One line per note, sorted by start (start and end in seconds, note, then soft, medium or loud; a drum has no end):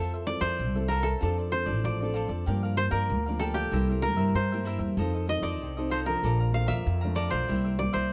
0.00 0.36 F2 medium
0.00 0.56 F3 medium
0.00 0.25 C4 medium
0.00 0.26 E4 medium
0.00 0.11 F4 medium
0.00 0.11 A4 medium
0.00 0.26 A4 medium
0.00 0.56 A#4 medium
0.00 0.11 C5 medium
0.00 0.12 E5 medium
0.14 0.27 A4 soft
0.14 0.28 C5 medium
0.14 0.27 E5 medium
0.26 0.56 C4 medium
0.26 0.57 E4 soft
0.26 0.57 A4 medium
0.26 1.84 D5 loud
0.26 muted cavaquinho stroke soft
0.41 0.61 F2 medium
0.41 0.74 A4 medium
0.41 1.52 C5 loud
0.41 0.73 C5 medium
0.41 0.73 E5 medium
0.58 1.13 C2 medium
0.58 1.18 C3 medium
0.75 1.17 C4 medium
0.75 1.17 E4 medium
0.75 1.17 A4 medium
0.75 0.88 A4 soft
0.75 0.89 C5 soft
0.75 0.89 E5 soft
0.88 1.04 F4 medium
0.88 1.04 A4 medium
0.88 1.09 A#4 medium
0.88 1.03 C5 medium
0.88 1.02 E5 medium
1.03 2.97 A4 medium
1.03 1.20 A4 soft
1.03 1.20 C5 soft
1.03 1.19 E5 soft
1.21 1.68 F2 medium
1.21 1.81 F3 medium
1.21 1.48 C4 medium
1.21 1.48 D4 medium
1.21 1.36 F4 medium
1.21 1.36 A4 medium
1.21 1.49 A4 medium
1.21 1.37 C5 medium
1.21 1.37 D5 medium
1.38 1.51 A4 soft
1.38 1.51 C5 soft
1.38 1.52 D5 soft
1.52 1.95 C4 medium
1.52 1.95 D4 medium
1.52 1.95 A4 medium
1.52 2.77 C5 medium
1.52 muted cavaquinho stroke soft
1.66 1.81 A1 medium
1.66 1.99 A4 medium
1.66 1.98 C5 medium
1.66 1.97 D5 medium
1.84 2.24 A1 loud
1.84 2.44 F3 medium
1.84 3.45 D5 medium
2.00 2.43 C4 medium
2.00 2.43 D4 medium
2.00 2.43 A4 medium
2.00 2.14 A4 soft
2.00 2.14 C5 soft
2.00 2.15 D5 soft
2.14 2.29 F4 medium
2.14 2.30 A4 medium
2.14 2.28 C5 medium
2.14 2.28 D5 medium
2.29 2.43 F2 medium
2.29 2.46 A4 soft
2.29 2.45 C5 soft
2.29 2.45 D5 soft
2.46 2.87 G2 medium
2.46 3.07 G2 medium
2.46 2.74 F3 medium
2.46 2.74 A#3 medium
2.46 2.74 D4 medium
2.46 2.61 G4 medium
2.46 2.62 A#4 medium
2.46 2.62 D5 medium
2.46 2.62 F5 medium
2.63 2.76 A#4 soft
2.63 2.77 D5 soft
2.63 2.77 F5 medium
2.77 3.20 F3 soft
2.77 3.21 A#3 medium
2.77 3.21 D4 soft
2.77 2.83 C5 loud
2.77 muted cavaquinho stroke soft
2.91 3.11 G2 medium
2.91 3.46 A#4 medium
2.91 3.24 A#4 medium
2.91 3.23 D5 medium
2.91 3.23 F5 medium
3.10 3.63 D2 medium
3.10 3.70 D3 medium
3.26 3.69 F3 medium
3.26 3.69 A#3 medium
3.26 3.69 D4 medium
3.26 3.39 A#4 soft
3.26 3.40 D5 soft
3.26 3.40 F5 soft
3.39 3.55 G4 medium
3.39 4.08 A4 medium
3.39 3.55 A#4 medium
3.39 3.54 D5 medium
3.39 3.53 F5 medium
3.54 5.58 G4 medium
3.54 3.71 A#4 soft
3.54 3.71 D5 soft
3.54 3.70 F5 soft
3.72 4.17 C2 medium
3.72 4.33 C3 medium
3.72 3.92 G3 medium
3.72 3.92 A#3 medium
3.72 3.87 E4 medium
3.72 3.92 E4 medium
3.72 3.87 A#4 medium
3.72 3.87 C5 medium
3.72 3.88 E5 medium
3.89 4.03 A#4 soft
3.89 4.03 C5 soft
3.89 4.03 E5 soft
4.02 4.34 G3 medium
4.02 4.34 A#3 medium
4.02 4.34 E4 medium
4.02 5.86 A#4 medium
4.02 muted cavaquinho stroke soft
4.17 4.31 G2 loud
4.17 4.49 A#4 medium
4.17 4.49 C5 medium
4.17 4.48 E5 medium
4.34 4.75 G2 loud
4.34 4.96 G2 medium
4.34 5.91 C5 medium
4.52 4.94 G3 medium
4.52 4.94 A#3 medium
4.52 4.94 E4 medium
4.52 4.64 A#4 soft
4.52 4.65 C5 soft
4.52 4.66 E5 soft
4.65 4.80 E4 medium
4.65 4.80 A#4 medium
4.65 4.79 C5 medium
4.65 4.78 E5 medium
4.78 4.94 E2 medium
4.78 4.96 A#4 soft
4.78 4.96 C5 soft
4.78 4.95 E5 soft
4.97 5.38 F2 loud
4.97 5.58 F3 medium
4.97 5.25 C4 medium
4.97 5.25 D#4 medium
4.97 5.12 F4 medium
4.97 5.13 A4 medium
4.97 5.25 A4 medium
4.97 5.13 C5 medium
4.97 5.13 D#5 medium
5.14 5.27 A4 soft
5.14 5.27 C5 soft
5.14 5.28 D#5 medium
5.27 5.71 C4 medium
5.27 5.72 D#4 soft
5.27 5.72 A4 medium
5.27 5.49 D#5 medium
5.27 muted cavaquinho stroke soft
5.42 5.60 F2 medium
5.42 5.75 A4 soft
5.42 5.75 C5 medium
5.42 7.03 D5 medium
5.42 5.74 D#5 medium
5.60 6.14 C2 medium
5.60 6.21 C3 medium
5.77 6.04 C4 medium
5.77 6.04 D#4 medium
5.77 6.04 A4 medium
5.77 5.90 A4 soft
5.77 5.90 C5 soft
5.77 5.91 D#5 soft
5.90 6.06 F4 medium
5.90 6.06 A4 medium
5.90 5.97 C5 medium
5.90 6.05 C5 medium
5.90 6.04 D#5 medium
6.05 6.49 F3 medium
6.05 6.50 D4 medium
6.05 6.22 A4 soft
6.05 7.90 A#4 medium
6.05 6.22 C5 soft
6.05 6.21 D#5 soft
6.23 6.70 A#1 loud
6.23 6.85 A#2 medium
6.23 6.38 A4 medium
6.23 6.39 D5 medium
6.23 6.39 F5 medium
6.23 6.38 A#5 medium
6.39 6.52 D5 soft
6.39 6.52 F5 soft
6.39 6.53 A#5 soft
6.53 6.84 F3 medium
6.53 6.85 A3 medium
6.53 6.85 D4 medium
6.53 6.74 F5 medium
6.53 muted cavaquinho stroke soft
6.66 6.83 F2 medium
6.66 7.00 D5 medium
6.66 8.13 E5 loud
6.66 7.00 F5 medium
6.66 6.99 A#5 medium
6.86 7.27 F2 loud
6.86 7.47 F2 medium
7.01 7.45 F3 medium
7.01 7.46 A3 medium
7.01 7.46 D4 medium
7.01 7.15 D5 soft
7.01 7.15 F5 soft
7.01 7.16 A#5 soft
7.15 7.31 A4 medium
7.15 7.78 D5 medium
7.15 7.31 D5 medium
7.15 7.30 F5 medium
7.15 7.29 A#5 medium
7.30 7.46 B1 medium
7.30 7.93 C5 medium
7.30 7.47 D5 soft
7.30 7.47 F5 soft
7.30 7.46 A#5 soft
7.48 7.89 C2 medium
7.48 8.10 C3 medium
7.48 7.76 G3 medium
7.48 7.77 A#3 soft
7.48 7.63 E4 medium
7.48 7.77 E4 medium
7.48 7.64 A#4 medium
7.48 7.64 C5 medium
7.48 7.63 E5 medium
7.64 7.78 A#4 soft
7.64 7.79 C5 soft
7.64 7.79 E5 medium
7.79 8.10 G3 soft
7.79 8.11 A#3 medium
7.79 8.11 E4 medium
7.79 8.13 D5 medium
7.79 muted cavaquinho stroke soft
7.93 8.13 C2 medium
7.93 8.13 A#4 medium
7.93 8.13 C5 medium
7.93 8.13 E5 medium